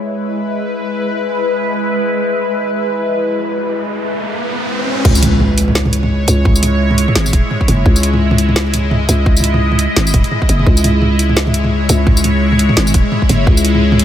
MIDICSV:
0, 0, Header, 1, 6, 480
1, 0, Start_track
1, 0, Key_signature, 4, "minor"
1, 0, Tempo, 350877
1, 1149, Time_signature, 4, 2, 24, 8
1, 19215, End_track
2, 0, Start_track
2, 0, Title_t, "Synth drone"
2, 0, Program_c, 0, 95
2, 0, Note_on_c, 0, 56, 72
2, 0, Note_on_c, 0, 64, 66
2, 0, Note_on_c, 0, 71, 81
2, 6851, Note_off_c, 0, 56, 0
2, 6852, Note_off_c, 0, 64, 0
2, 6881, Note_off_c, 0, 71, 0
2, 6912, Note_on_c, 0, 64, 77
2, 6913, Note_on_c, 0, 73, 88
2, 6914, Note_on_c, 0, 56, 81
2, 10740, Note_off_c, 0, 73, 0
2, 10751, Note_on_c, 0, 75, 84
2, 14579, Note_off_c, 0, 75, 0
2, 14586, Note_on_c, 0, 73, 91
2, 18417, Note_off_c, 0, 73, 0
2, 18425, Note_on_c, 0, 76, 92
2, 19215, Note_off_c, 0, 56, 0
2, 19215, Note_off_c, 0, 64, 0
2, 19215, Note_off_c, 0, 76, 0
2, 19215, End_track
3, 0, Start_track
3, 0, Title_t, "808-style bass"
3, 0, Program_c, 1, 38
3, 6909, Note_on_c, 1, 37, 96
3, 8576, Note_off_c, 1, 37, 0
3, 8589, Note_on_c, 1, 37, 97
3, 9671, Note_off_c, 1, 37, 0
3, 9790, Note_on_c, 1, 32, 91
3, 10021, Note_off_c, 1, 32, 0
3, 10029, Note_on_c, 1, 27, 91
3, 10158, Note_off_c, 1, 27, 0
3, 10510, Note_on_c, 1, 30, 101
3, 10734, Note_off_c, 1, 30, 0
3, 10747, Note_on_c, 1, 37, 94
3, 12415, Note_off_c, 1, 37, 0
3, 12431, Note_on_c, 1, 37, 92
3, 13512, Note_off_c, 1, 37, 0
3, 13634, Note_on_c, 1, 32, 96
3, 13863, Note_off_c, 1, 32, 0
3, 13872, Note_on_c, 1, 27, 91
3, 13999, Note_off_c, 1, 27, 0
3, 14353, Note_on_c, 1, 30, 100
3, 14575, Note_off_c, 1, 30, 0
3, 14590, Note_on_c, 1, 37, 97
3, 16257, Note_off_c, 1, 37, 0
3, 16273, Note_on_c, 1, 37, 92
3, 17353, Note_off_c, 1, 37, 0
3, 17472, Note_on_c, 1, 32, 95
3, 17700, Note_off_c, 1, 32, 0
3, 17709, Note_on_c, 1, 27, 92
3, 17837, Note_off_c, 1, 27, 0
3, 18188, Note_on_c, 1, 30, 104
3, 18413, Note_off_c, 1, 30, 0
3, 18428, Note_on_c, 1, 37, 100
3, 19215, Note_off_c, 1, 37, 0
3, 19215, End_track
4, 0, Start_track
4, 0, Title_t, "Impact"
4, 0, Program_c, 2, 103
4, 6910, Note_on_c, 2, 60, 78
4, 8829, Note_off_c, 2, 60, 0
4, 19215, End_track
5, 0, Start_track
5, 0, Title_t, "Riser"
5, 0, Program_c, 3, 103
5, 3071, Note_on_c, 3, 60, 71
5, 6910, Note_off_c, 3, 60, 0
5, 19215, End_track
6, 0, Start_track
6, 0, Title_t, "Drums"
6, 6908, Note_on_c, 9, 36, 113
6, 6908, Note_on_c, 9, 45, 56
6, 6908, Note_on_c, 9, 49, 110
6, 7044, Note_off_c, 9, 36, 0
6, 7045, Note_off_c, 9, 45, 0
6, 7045, Note_off_c, 9, 49, 0
6, 7048, Note_on_c, 9, 54, 66
6, 7149, Note_on_c, 9, 42, 78
6, 7149, Note_on_c, 9, 45, 77
6, 7184, Note_off_c, 9, 54, 0
6, 7285, Note_off_c, 9, 42, 0
6, 7285, Note_off_c, 9, 45, 0
6, 7389, Note_on_c, 9, 45, 58
6, 7526, Note_off_c, 9, 45, 0
6, 7628, Note_on_c, 9, 42, 67
6, 7765, Note_off_c, 9, 42, 0
6, 7769, Note_on_c, 9, 45, 53
6, 7870, Note_on_c, 9, 38, 115
6, 7906, Note_off_c, 9, 45, 0
6, 8007, Note_off_c, 9, 38, 0
6, 8010, Note_on_c, 9, 45, 81
6, 8110, Note_on_c, 9, 42, 77
6, 8147, Note_off_c, 9, 45, 0
6, 8247, Note_off_c, 9, 42, 0
6, 8250, Note_on_c, 9, 45, 56
6, 8387, Note_off_c, 9, 45, 0
6, 8588, Note_on_c, 9, 42, 71
6, 8588, Note_on_c, 9, 45, 57
6, 8588, Note_on_c, 9, 54, 69
6, 8725, Note_off_c, 9, 42, 0
6, 8725, Note_off_c, 9, 45, 0
6, 8725, Note_off_c, 9, 54, 0
6, 8828, Note_on_c, 9, 36, 122
6, 8829, Note_on_c, 9, 45, 80
6, 8965, Note_off_c, 9, 36, 0
6, 8965, Note_off_c, 9, 45, 0
6, 8968, Note_on_c, 9, 54, 64
6, 9066, Note_on_c, 9, 42, 79
6, 9066, Note_on_c, 9, 45, 53
6, 9105, Note_off_c, 9, 54, 0
6, 9203, Note_off_c, 9, 42, 0
6, 9203, Note_off_c, 9, 45, 0
6, 9449, Note_on_c, 9, 45, 55
6, 9548, Note_on_c, 9, 42, 71
6, 9586, Note_off_c, 9, 45, 0
6, 9685, Note_off_c, 9, 42, 0
6, 9688, Note_on_c, 9, 45, 80
6, 9788, Note_on_c, 9, 38, 126
6, 9824, Note_off_c, 9, 45, 0
6, 9925, Note_off_c, 9, 38, 0
6, 9931, Note_on_c, 9, 45, 50
6, 9931, Note_on_c, 9, 54, 59
6, 10028, Note_on_c, 9, 36, 110
6, 10030, Note_on_c, 9, 42, 78
6, 10067, Note_off_c, 9, 45, 0
6, 10067, Note_off_c, 9, 54, 0
6, 10165, Note_off_c, 9, 36, 0
6, 10167, Note_off_c, 9, 42, 0
6, 10272, Note_on_c, 9, 45, 57
6, 10407, Note_on_c, 9, 36, 66
6, 10409, Note_off_c, 9, 45, 0
6, 10510, Note_on_c, 9, 42, 69
6, 10510, Note_on_c, 9, 45, 85
6, 10544, Note_off_c, 9, 36, 0
6, 10646, Note_off_c, 9, 42, 0
6, 10646, Note_off_c, 9, 45, 0
6, 10748, Note_on_c, 9, 36, 126
6, 10749, Note_on_c, 9, 45, 54
6, 10885, Note_off_c, 9, 36, 0
6, 10886, Note_off_c, 9, 45, 0
6, 10888, Note_on_c, 9, 54, 60
6, 10989, Note_on_c, 9, 42, 76
6, 11024, Note_off_c, 9, 54, 0
6, 11126, Note_off_c, 9, 42, 0
6, 11128, Note_on_c, 9, 45, 50
6, 11265, Note_off_c, 9, 45, 0
6, 11369, Note_on_c, 9, 45, 82
6, 11470, Note_on_c, 9, 42, 65
6, 11506, Note_off_c, 9, 45, 0
6, 11606, Note_off_c, 9, 42, 0
6, 11611, Note_on_c, 9, 45, 49
6, 11710, Note_on_c, 9, 38, 124
6, 11748, Note_off_c, 9, 45, 0
6, 11847, Note_off_c, 9, 38, 0
6, 11951, Note_on_c, 9, 42, 82
6, 11951, Note_on_c, 9, 45, 52
6, 12088, Note_off_c, 9, 42, 0
6, 12088, Note_off_c, 9, 45, 0
6, 12192, Note_on_c, 9, 45, 77
6, 12329, Note_off_c, 9, 45, 0
6, 12432, Note_on_c, 9, 42, 72
6, 12432, Note_on_c, 9, 45, 57
6, 12432, Note_on_c, 9, 54, 66
6, 12568, Note_off_c, 9, 42, 0
6, 12568, Note_off_c, 9, 45, 0
6, 12568, Note_off_c, 9, 54, 0
6, 12671, Note_on_c, 9, 36, 127
6, 12807, Note_off_c, 9, 36, 0
6, 12812, Note_on_c, 9, 54, 64
6, 12862, Note_on_c, 9, 45, 50
6, 12911, Note_on_c, 9, 42, 76
6, 12949, Note_off_c, 9, 54, 0
6, 12999, Note_off_c, 9, 45, 0
6, 13048, Note_off_c, 9, 42, 0
6, 13052, Note_on_c, 9, 45, 68
6, 13188, Note_off_c, 9, 45, 0
6, 13293, Note_on_c, 9, 45, 50
6, 13391, Note_on_c, 9, 42, 63
6, 13430, Note_off_c, 9, 45, 0
6, 13527, Note_off_c, 9, 42, 0
6, 13632, Note_on_c, 9, 38, 123
6, 13632, Note_on_c, 9, 45, 52
6, 13769, Note_off_c, 9, 38, 0
6, 13769, Note_off_c, 9, 45, 0
6, 13772, Note_on_c, 9, 54, 62
6, 13870, Note_on_c, 9, 42, 79
6, 13870, Note_on_c, 9, 45, 76
6, 13871, Note_on_c, 9, 36, 112
6, 13909, Note_off_c, 9, 54, 0
6, 14007, Note_off_c, 9, 42, 0
6, 14007, Note_off_c, 9, 45, 0
6, 14008, Note_off_c, 9, 36, 0
6, 14011, Note_on_c, 9, 42, 34
6, 14111, Note_on_c, 9, 45, 53
6, 14148, Note_off_c, 9, 42, 0
6, 14248, Note_off_c, 9, 45, 0
6, 14252, Note_on_c, 9, 36, 65
6, 14351, Note_on_c, 9, 42, 69
6, 14388, Note_off_c, 9, 36, 0
6, 14488, Note_off_c, 9, 42, 0
6, 14492, Note_on_c, 9, 45, 49
6, 14590, Note_on_c, 9, 36, 119
6, 14592, Note_off_c, 9, 45, 0
6, 14592, Note_on_c, 9, 45, 52
6, 14727, Note_off_c, 9, 36, 0
6, 14729, Note_off_c, 9, 45, 0
6, 14733, Note_on_c, 9, 54, 68
6, 14833, Note_on_c, 9, 42, 73
6, 14833, Note_on_c, 9, 45, 73
6, 14869, Note_off_c, 9, 54, 0
6, 14970, Note_off_c, 9, 42, 0
6, 14970, Note_off_c, 9, 45, 0
6, 15071, Note_on_c, 9, 45, 55
6, 15208, Note_off_c, 9, 45, 0
6, 15311, Note_on_c, 9, 42, 63
6, 15448, Note_off_c, 9, 42, 0
6, 15450, Note_on_c, 9, 45, 50
6, 15549, Note_on_c, 9, 38, 127
6, 15587, Note_off_c, 9, 45, 0
6, 15686, Note_off_c, 9, 38, 0
6, 15689, Note_on_c, 9, 45, 77
6, 15788, Note_on_c, 9, 42, 77
6, 15826, Note_off_c, 9, 45, 0
6, 15925, Note_off_c, 9, 42, 0
6, 15929, Note_on_c, 9, 45, 50
6, 16066, Note_off_c, 9, 45, 0
6, 16268, Note_on_c, 9, 42, 67
6, 16268, Note_on_c, 9, 45, 53
6, 16268, Note_on_c, 9, 54, 69
6, 16405, Note_off_c, 9, 42, 0
6, 16405, Note_off_c, 9, 45, 0
6, 16405, Note_off_c, 9, 54, 0
6, 16506, Note_on_c, 9, 45, 79
6, 16508, Note_on_c, 9, 36, 118
6, 16643, Note_off_c, 9, 45, 0
6, 16644, Note_off_c, 9, 36, 0
6, 16647, Note_on_c, 9, 54, 70
6, 16747, Note_on_c, 9, 42, 71
6, 16747, Note_on_c, 9, 45, 49
6, 16784, Note_off_c, 9, 54, 0
6, 16883, Note_off_c, 9, 42, 0
6, 16883, Note_off_c, 9, 45, 0
6, 17128, Note_on_c, 9, 45, 53
6, 17227, Note_on_c, 9, 42, 62
6, 17265, Note_off_c, 9, 45, 0
6, 17364, Note_off_c, 9, 42, 0
6, 17364, Note_on_c, 9, 45, 79
6, 17467, Note_on_c, 9, 38, 118
6, 17501, Note_off_c, 9, 45, 0
6, 17604, Note_off_c, 9, 38, 0
6, 17605, Note_on_c, 9, 45, 51
6, 17605, Note_on_c, 9, 54, 68
6, 17705, Note_on_c, 9, 42, 71
6, 17707, Note_on_c, 9, 36, 107
6, 17742, Note_off_c, 9, 45, 0
6, 17742, Note_off_c, 9, 54, 0
6, 17842, Note_off_c, 9, 42, 0
6, 17843, Note_off_c, 9, 36, 0
6, 17947, Note_on_c, 9, 45, 57
6, 18083, Note_off_c, 9, 45, 0
6, 18086, Note_on_c, 9, 36, 60
6, 18186, Note_on_c, 9, 42, 65
6, 18186, Note_on_c, 9, 45, 79
6, 18223, Note_off_c, 9, 36, 0
6, 18323, Note_off_c, 9, 42, 0
6, 18323, Note_off_c, 9, 45, 0
6, 18427, Note_on_c, 9, 36, 116
6, 18427, Note_on_c, 9, 45, 57
6, 18564, Note_off_c, 9, 36, 0
6, 18564, Note_off_c, 9, 45, 0
6, 18567, Note_on_c, 9, 54, 68
6, 18668, Note_on_c, 9, 42, 72
6, 18704, Note_off_c, 9, 54, 0
6, 18805, Note_off_c, 9, 42, 0
6, 18805, Note_on_c, 9, 45, 51
6, 18942, Note_off_c, 9, 45, 0
6, 19045, Note_on_c, 9, 45, 82
6, 19144, Note_on_c, 9, 42, 65
6, 19182, Note_off_c, 9, 45, 0
6, 19215, Note_off_c, 9, 42, 0
6, 19215, End_track
0, 0, End_of_file